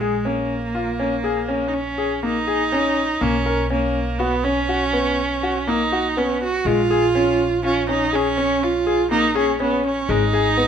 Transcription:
0.00 3.18 A#1 medium
0.00 0.27 G#3 medium
0.00 0.14 G#4 medium
0.25 1.69 A#3 medium
0.25 0.51 C#4 medium
0.75 0.88 F4 medium
0.99 1.13 C#4 medium
1.24 1.37 G#4 medium
1.49 1.75 C#4 medium
1.68 1.75 D#4 medium
1.74 2.23 C#4 medium
1.98 2.11 G#4 medium
2.23 2.36 A#3 medium
2.23 3.23 D#4 medium
2.47 2.60 G#4 medium
2.72 2.98 C#4 medium
3.21 6.62 B1 medium
3.21 3.34 A#3 medium
3.21 3.71 C#4 medium
3.46 3.59 A#4 medium
3.70 4.20 A#3 medium
3.70 3.96 C#4 medium
4.19 4.45 B3 medium
4.19 4.33 F#4 medium
4.44 5.69 C#4 medium
4.44 4.58 C#4 medium
4.69 4.82 F#4 medium
4.93 5.19 B3 medium
5.43 5.56 F#4 medium
5.68 5.81 A#3 medium
5.68 6.19 D#4 medium
5.92 6.05 F#4 medium
6.17 6.43 B3 medium
6.17 6.42 C#4 medium
6.43 6.68 F#4 medium
6.65 10.05 A#1 medium
6.65 6.79 G#3 medium
6.65 7.64 F4 loud
6.90 7.03 G#4 medium
7.15 7.41 C#4 medium
7.64 7.87 C#4 medium
7.64 7.77 F4 medium
7.89 8.02 C#4 medium
7.89 8.16 D#4 medium
8.13 8.65 C#4 medium
8.13 8.26 G#4 medium
8.38 8.64 C#4 medium
8.63 9.10 F4 medium
8.87 9.00 G#4 medium
9.11 9.24 A#3 medium
9.11 9.34 D#4 medium
9.35 9.59 C#4 medium
9.35 9.48 G#4 medium
9.60 9.84 B3 medium
9.60 9.86 C#4 medium
9.86 10.12 C#4 medium
10.09 10.68 G#1 medium
10.09 10.22 G#3 medium
10.09 10.68 D#4 medium
10.33 10.46 G#4 medium
10.57 10.68 B3 medium

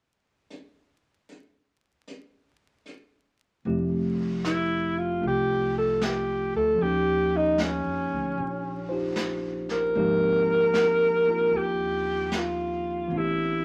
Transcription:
0.50 closed hi-hat soft
1.29 closed hi-hat soft
2.08 closed hi-hat soft
2.86 closed hi-hat soft
3.65 5.19 F1 medium
3.65 6.74 F3 soft
3.65 5.20 A3 soft
3.65 6.81 C4 soft
3.65 6.81 E4 soft
3.65 6.81 G4 soft
3.65 brush sweep soft
4.45 5.00 E4 medium
4.45 snare soft
4.45 hi-hat pedal soft
4.99 5.24 F4 medium
5.21 6.50 C2 medium
5.21 6.79 A3 soft
5.21 6.80 D4 soft
5.21 6.81 F4 soft
5.21 brush sweep soft
5.27 5.74 G4 medium
5.78 6.05 A4 medium
6.01 6.55 G4 medium
6.01 snare soft
6.01 hi-hat pedal soft
6.55 6.79 D2 medium
6.55 6.84 A4 medium
6.75 9.92 F3 soft
6.75 9.94 A#3 soft
6.80 7.81 D#2 medium
6.80 9.95 C#4 soft
6.80 8.89 D#4 soft
6.80 7.38 G4 medium
6.80 brush sweep soft
6.87 8.91 G4 soft
7.36 7.63 D#4 medium
7.58 9.17 C#4 medium
7.58 snare soft
7.58 hi-hat pedal medium
7.86 8.10 F2 soft
8.12 8.36 D2 medium
8.37 9.91 A#1 medium
8.37 brush sweep soft
8.89 9.95 D#4 soft
8.89 9.95 F4 soft
8.89 9.96 G4 soft
8.89 9.94 C5 soft
9.16 snare soft
9.16 hi-hat pedal soft
9.69 11.58 A#4 loud
9.69 snare soft
9.95 11.48 G#1 medium
9.95 13.11 F3 soft
9.95 11.25 A#3 soft
9.95 13.11 C4 soft
9.95 13.11 D#4 soft
9.95 13.11 G4 medium
9.95 brush sweep soft
10.74 snare soft
10.74 hi-hat pedal soft
11.27 13.10 A#3 soft
11.27 13.11 D4 soft
11.27 13.12 F4 soft
11.51 13.06 D#2 medium
11.51 brush sweep soft
11.57 12.39 G4 medium
12.32 snare soft
12.32 hi-hat pedal soft
12.38 13.18 F4 medium
13.07 13.65 A1 medium
13.07 13.65 E3 soft
13.07 13.65 B3 soft
13.07 brush sweep soft
13.12 13.65 C4 soft
13.12 13.65 D4 soft
13.17 13.65 E4 medium
13.17 13.65 G4 soft

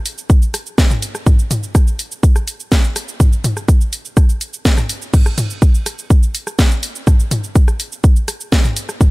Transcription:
0.06 open hi-hat loud
0.06 shaker medium
0.18 shaker soft
0.30 kick loud
0.30 shaker medium
0.42 shaker soft
0.54 cross-stick medium
0.54 open hi-hat loud
0.54 shaker medium
0.66 shaker soft
0.78 kick loud
0.78 snare loud
0.78 shaker medium
0.91 mid tom medium
0.91 shaker soft
1.02 open hi-hat loud
1.02 shaker medium
1.15 cross-stick medium
1.15 shaker soft
1.27 kick loud
1.27 mid tom medium
1.27 shaker medium
1.39 shaker soft
1.51 open hi-hat loud
1.51 mid tom medium
1.51 shaker medium
1.63 shaker soft
1.75 kick loud
1.75 cross-stick medium
1.75 shaker medium
1.87 shaker soft
1.99 open hi-hat medium
1.99 shaker medium
2.12 shaker soft
2.23 kick loud
2.23 shaker medium
2.36 cross-stick medium
2.36 shaker soft
2.48 open hi-hat loud
2.48 shaker medium
2.60 shaker soft
2.72 kick loud
2.72 snare loud
2.72 shaker medium
2.84 shaker soft
2.96 cross-stick medium
2.96 open hi-hat loud
2.96 shaker medium
3.08 shaker soft
3.20 kick loud
3.20 mid tom medium
3.20 shaker medium
3.33 shaker soft
3.44 open hi-hat loud
3.44 mid tom medium
3.44 shaker medium
3.57 cross-stick soft
3.57 shaker soft
3.68 kick loud
3.68 shaker medium
3.81 shaker soft
3.93 open hi-hat loud
3.93 shaker medium
4.05 shaker soft
4.17 kick loud
4.17 cross-stick medium
4.17 shaker medium
4.29 shaker soft
4.41 open hi-hat loud
4.41 shaker medium
4.53 shaker medium
4.65 kick loud
4.65 snare loud
4.65 shaker medium
4.78 cross-stick medium
4.78 mid tom medium
4.78 shaker soft
4.89 open hi-hat loud
4.89 shaker medium
5.02 shaker soft
5.14 kick loud
5.14 mid tom medium
5.14 crash medium
5.14 shaker medium
5.26 cross-stick medium
5.26 shaker soft
5.38 open hi-hat loud
5.38 mid tom medium
5.38 shaker medium
5.50 shaker soft
5.62 kick loud
5.62 shaker medium
5.74 shaker soft
5.86 cross-stick soft
5.86 open hi-hat loud
5.86 shaker medium
5.99 shaker soft
6.10 kick loud
6.10 shaker medium
6.23 shaker soft
6.35 open hi-hat loud
6.35 shaker medium
6.47 cross-stick medium
6.47 shaker medium
6.59 kick loud
6.59 snare loud
6.59 shaker medium
6.71 shaker soft
6.83 open hi-hat loud
6.83 shaker medium
6.95 shaker soft
7.07 kick loud
7.07 cross-stick medium
7.07 mid tom medium
7.07 shaker medium
7.20 shaker soft
7.31 open hi-hat loud
7.31 mid tom medium
7.31 shaker medium
7.44 shaker soft
7.55 kick loud
7.55 shaker medium
7.68 cross-stick medium
7.68 shaker soft
7.80 open hi-hat loud
7.80 shaker medium
7.92 shaker soft
8.04 kick loud
8.04 shaker medium
8.16 shaker soft
8.28 cross-stick medium
8.28 open hi-hat loud
8.28 shaker medium
8.41 shaker soft
8.52 kick loud
8.52 snare loud
8.52 shaker medium
8.65 mid tom medium
8.65 shaker soft
8.76 open hi-hat loud
8.76 shaker medium
8.89 cross-stick medium
8.89 shaker soft
9.01 kick loud
9.01 mid tom medium
9.01 shaker medium

